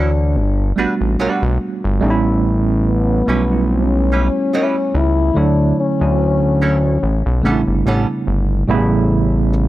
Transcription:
Already playing: analog synth bass D2, tine electric piano E3 A3 D4 F#4 C#5, french horn D4, hollow-body jazz guitar A4
0.36 analog synth bass G1
0.76 analog synth bass A1, tine electric piano G3 A3 B3 D4 F#4, hollow-body jazz guitar G3 D4 F#4 B4
1.01 analog synth bass A1
1.19 analog synth bass B1, hollow-body jazz guitar G3 D4 F#4 B4
1.42 analog synth bass B1
1.84 analog synth bass G1
2.00 analog synth bass A1, tine electric piano G3 A3 B3 C#4 D#4
2.10 tine electric piano E4
2.87 french horn B3
3.26 analog synth bass B1, tine electric piano G3 A3 B3 C#4 F#4, hollow-body jazz guitar G3 C#4 E4
3.30 hollow-body jazz guitar B4
3.49 tine electric piano G3 A3 B3 C#4 E4
3.71 french horn C#4
4.12 hollow-body jazz guitar G3 C#4 E4 B4
4.53 hollow-body jazz guitar G3 C#4 E4 B4
4.94 analog synth bass C#2, french horn E4
5.34 analog synth bass D2, tine electric piano D3 F#3 A3 E4 C#5
5.38 french horn D4
5.80 french horn C#4
5.99 analog synth bass D2, tine electric piano D3 F#3 A3 C#4 F#4
6.62 hollow-body jazz guitar F#3 C#4 E4 A4
7.03 analog synth bass A1
7.26 analog synth bass B1
7.42 analog synth bass A1, tine electric piano C#3 G3 A3 B3 D4, hollow-body jazz guitar G3 B3
7.46 hollow-body jazz guitar C#4 A4
7.52 tine electric piano E4
7.67 analog synth bass G1
7.86 analog synth bass A1, hollow-body jazz guitar G3 B3 C#4 A4
8.27 analog synth bass G1
8.68 analog synth bass A1, tine electric piano B2 G3 A3 B3 E4
8.74 tine electric piano C#3
9.53 muted hollow-body jazz guitar stroke

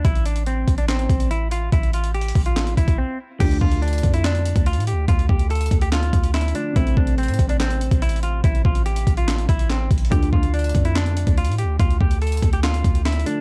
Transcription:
0.05 808-style bass A1, clean electric guitar E4, kick, closed hi-hat
0.15 closed hi-hat
0.26 clean electric guitar D4, closed hi-hat
0.36 closed hi-hat
0.46 clean electric guitar C4, closed hi-hat
0.68 808-style bass A1, kick, closed hi-hat
0.78 clean electric guitar D4, closed hi-hat
0.88 clean electric guitar C4, snare, clap, closed hi-hat
0.99 closed hi-hat
1.10 808-style bass A1, kick, closed hi-hat
1.20 closed hi-hat
1.31 clean electric guitar E4, closed hi-hat
1.51 clean electric guitar F4, closed hi-hat
1.72 808-style bass A1, clean electric guitar E4, kick, closed hi-hat
1.83 closed hi-hat
1.93 clean electric guitar F4, closed hi-hat
2.04 closed hi-hat
2.14 clean electric guitar G4, closed hi-hat
2.21 closed hi-hat
2.28 closed hi-hat
2.35 808-style bass A1, kick, open hi-hat
2.46 clean electric guitar F4, closed hi-hat
2.56 snare, clap, closed hi-hat
2.67 closed hi-hat
2.77 808-style bass A1, clean electric guitar E4, kick, closed hi-hat
2.88 808-style bass A1, kick, closed hi-hat
2.98 clean electric guitar C4
3.39 808-style bass D2, grand piano D3 F3 A3 D4, clean electric guitar G4, kick, closed hi-hat, crash
3.51 closed hi-hat
3.61 808-style bass D2, clean electric guitar F4, kick
3.72 closed hi-hat
3.82 clean electric guitar D4, closed hi-hat
3.88 closed hi-hat
3.93 closed hi-hat
3.98 closed hi-hat
4.03 808-style bass F2, kick, closed hi-hat
4.14 clean electric guitar E4, closed hi-hat
4.24 clean electric guitar D4, snare, clap, closed hi-hat
4.35 closed hi-hat
4.46 closed hi-hat
4.56 808-style bass D2, kick, closed hi-hat
4.66 clean electric guitar F4, closed hi-hat
4.73 808-style bass A2, closed hi-hat
4.80 closed hi-hat
4.87 clean electric guitar G4, closed hi-hat
4.93 808-style bass D2
5.08 808-style bass D2, clean electric guitar F4, kick, closed hi-hat
5.19 closed hi-hat
5.29 808-style bass D2, clean electric guitar G4, kick
5.39 closed hi-hat
5.50 clean electric guitar A4, closed hi-hat
5.55 closed hi-hat
5.61 closed hi-hat
5.66 closed hi-hat
5.71 808-style bass D2, kick, closed hi-hat
5.81 clean electric guitar G4, closed hi-hat
5.92 clean electric guitar F4, snare, clap, closed hi-hat
6.03 closed hi-hat
6.13 808-style bass D2, kick, closed hi-hat
6.24 closed hi-hat
6.34 clean electric guitar E4, snare, clap, closed hi-hat
6.41 closed hi-hat
6.48 closed hi-hat
6.54 grand piano D3 F3 A3 D4, clean electric guitar D4, closed hi-hat
6.73 808-style bass A1, grand piano C3 A3 C4, clean electric guitar E4, kick, closed hi-hat
6.87 closed hi-hat
6.97 808-style bass A1, clean electric guitar D4, kick
7.07 closed hi-hat
7.18 clean electric guitar C4, closed hi-hat
7.23 closed hi-hat
7.28 808-style bass A2, closed hi-hat
7.34 closed hi-hat
7.39 808-style bass A1, kick, closed hi-hat
7.49 clean electric guitar D4, closed hi-hat
7.60 clean electric guitar C4, snare, clap, closed hi-hat
7.70 closed hi-hat
7.81 closed hi-hat
7.91 808-style bass A1, kick, closed hi-hat
8.02 clean electric guitar E4, closed hi-hat
8.09 closed hi-hat
8.16 closed hi-hat
8.23 clean electric guitar F4, closed hi-hat
8.44 808-style bass A1, clean electric guitar E4, kick, closed hi-hat
8.55 closed hi-hat
8.65 808-style bass A1, clean electric guitar F4, kick
8.75 closed hi-hat
8.86 clean electric guitar G4, closed hi-hat
8.96 closed hi-hat
9.07 808-style bass A1, kick, closed hi-hat
9.17 clean electric guitar F4, closed hi-hat
9.28 snare, clap, closed hi-hat
9.38 closed hi-hat
9.49 808-style bass A1, clean electric guitar E4, kick, closed hi-hat
9.59 closed hi-hat
9.70 clean electric guitar C4, snare, clap, closed hi-hat
9.91 808-style bass A1, kick, closed hi-hat
9.98 closed hi-hat
10.05 closed hi-hat
10.10 808-style bass D2, grand piano D3 F3 A3 D4, clean electric guitar G4, kick, closed hi-hat
10.23 closed hi-hat
10.33 808-style bass D2, clean electric guitar F4, kick
10.43 closed hi-hat
10.54 clean electric guitar D4, closed hi-hat
10.59 closed hi-hat
10.64 closed hi-hat
10.69 closed hi-hat
10.75 808-style bass F2, kick, closed hi-hat
10.85 clean electric guitar E4, closed hi-hat
10.95 clean electric guitar D4, snare, clap, closed hi-hat
11.06 closed hi-hat
11.17 closed hi-hat
11.27 808-style bass D2, kick, closed hi-hat
11.38 clean electric guitar F4, closed hi-hat
11.45 808-style bass A2, closed hi-hat
11.52 closed hi-hat
11.58 clean electric guitar G4, closed hi-hat
11.64 808-style bass D2
11.80 808-style bass D2, clean electric guitar F4, kick, closed hi-hat
11.90 closed hi-hat
12.01 808-style bass D2, clean electric guitar G4, kick
12.11 closed hi-hat
12.22 clean electric guitar A4, closed hi-hat
12.27 closed hi-hat
12.32 closed hi-hat
12.37 closed hi-hat
12.43 808-style bass D2, kick, closed hi-hat
12.53 clean electric guitar G4, closed hi-hat
12.63 clean electric guitar F4, snare, clap, closed hi-hat
12.74 closed hi-hat
12.84 808-style bass D2, kick, closed hi-hat
12.95 closed hi-hat
13.05 clean electric guitar E4, snare, clap, closed hi-hat
13.12 closed hi-hat
13.20 closed hi-hat
13.25 grand piano D3 F3 A3 D4, clean electric guitar D4, closed hi-hat

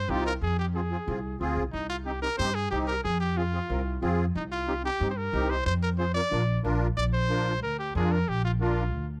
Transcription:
Already playing: trumpet C5
0.09 upright bass C2, accordion C4 D#4 F4, trumpet G4
0.26 trumpet A#4
0.42 upright bass F2, trumpet G#4
0.59 trumpet G4
0.75 accordion C4 F4 G#4, trumpet G#4
0.91 accordion C4 F4 G#4
1.07 upright bass C2, accordion C4 F4 G#4
1.40 upright bass D2, accordion C4 F4 G#4
1.57 upright bass C2
1.73 upright bass C2, trumpet D#4
1.89 trumpet F4
2.06 accordion C4 D#4 G4, trumpet G4
2.22 accordion C4 D#4 G4, trumpet A#4
2.38 upright bass G2, accordion C4 D#4 G4, trumpet C5
2.55 trumpet G#4
2.71 upright bass C2, accordion C4 D#4 G4, trumpet G4
2.87 trumpet A#4
3.04 upright bass F2, trumpet G#4
3.20 trumpet G4
3.36 accordion C4 F4 G#4, trumpet F4
3.53 accordion C4 F4 G#4
3.69 upright bass C2, accordion C4 F4 A#4
4.02 upright bass F2, accordion C4 F4 G#4
4.35 upright bass C2, trumpet D#4
4.52 trumpet F4
4.67 accordion C4 D#4 G4
4.83 accordion C4 D#4 G4, trumpet G4
5.00 upright bass G2, accordion C4 D#4 G4
5.10 trumpet C5
5.17 trumpet A#4
5.33 upright bass C2, accordion C4 D#4 G4
5.50 trumpet C5
5.66 upright bass F2, trumpet C5
5.82 trumpet A#4
5.99 accordion C4 F4 G#4, trumpet C5
6.14 accordion C4 F4 A#4, trumpet D5
6.31 upright bass A#1, accordion D4 F4 A#4
6.64 upright bass A#1, accordion D4 F4 A#4
6.97 upright bass A#1, trumpet D5
7.13 trumpet C5
7.30 accordion D4 F4 A#4
7.62 upright bass D2, trumpet A#4
7.79 trumpet G4
7.95 upright bass F2, accordion D4 F4 A#4, trumpet G#4
8.12 trumpet A#4
8.28 upright bass A#1, trumpet G4
8.45 trumpet F4
8.60 accordion D4 F4 A#4, trumpet F4
8.93 upright bass D2

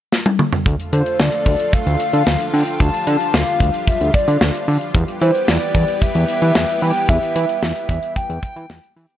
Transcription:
0.12 snare
0.26 high tom
0.39 mid tom
0.53 floor tom
0.66 analog synth bass D2, analog synth pad D3 F3 A3 F4, kick, closed hi-hat
0.80 closed hi-hat
0.93 analog synth bass D3, soft synth lead C5, closed hi-hat
1.06 closed hi-hat
1.19 analog synth bass D2, soft synth lead D5, snare
1.33 closed hi-hat
1.46 analog synth bass D2, kick, open hi-hat
1.60 closed hi-hat
1.73 soft synth lead F5, kick, closed hi-hat
1.86 analog synth bass D2, closed hi-hat
2.00 closed hi-hat
2.13 analog synth bass D3, closed hi-hat
2.27 analog synth bass D2, snare
2.40 closed hi-hat
2.53 analog synth bass D3, soft synth lead G5, open hi-hat
2.67 closed hi-hat
2.80 analog synth bass D2, analog synth pad G3, soft synth lead A5, kick, closed hi-hat
2.94 closed hi-hat
3.07 analog synth bass D3, closed hi-hat
3.21 closed hi-hat
3.34 analog synth bass D2, soft synth lead F5, snare
3.47 closed hi-hat
3.60 analog synth bass D2, kick, closed hi-hat
3.74 closed hi-hat
3.87 soft synth lead E5, kick, closed hi-hat
4.01 analog synth bass D2, closed hi-hat
4.14 soft synth lead D5, kick, closed hi-hat
4.28 analog synth bass D3, closed hi-hat
4.41 analog synth bass D2, snare
4.55 closed hi-hat
4.68 analog synth bass D3, open hi-hat
4.81 closed hi-hat
4.94 analog synth bass E2, analog synth pad E3 G3 B3 G4, kick, closed hi-hat
5.08 closed hi-hat
5.21 analog synth bass E3, soft synth lead C5, closed hi-hat
5.35 closed hi-hat
5.48 analog synth bass E2, soft synth lead D5, snare
5.61 closed hi-hat
5.75 analog synth bass E2, kick, closed hi-hat
5.88 closed hi-hat
6.02 soft synth lead E5, kick, closed hi-hat
6.15 analog synth bass E2, closed hi-hat
6.28 closed hi-hat
6.42 analog synth bass E3, closed hi-hat
6.55 analog synth bass E2, snare
6.69 closed hi-hat
6.82 analog synth bass E3, soft synth lead G5, open hi-hat
6.96 closed hi-hat
7.09 analog synth bass E2, soft synth lead E5, kick, closed hi-hat
7.23 closed hi-hat
7.36 analog synth bass E3, closed hi-hat
7.49 closed hi-hat
7.63 analog synth bass E2, soft synth lead E5, snare
7.76 closed hi-hat
7.89 analog synth bass E2, kick, closed hi-hat
8.03 closed hi-hat
8.16 soft synth lead G5, kick, closed hi-hat
8.29 analog synth bass E2, closed hi-hat
8.43 soft synth lead G5, kick, closed hi-hat
8.56 analog synth bass E3, closed hi-hat
8.70 analog synth bass E2, snare
8.83 closed hi-hat
8.96 analog synth bass E3, open hi-hat
9.10 closed hi-hat

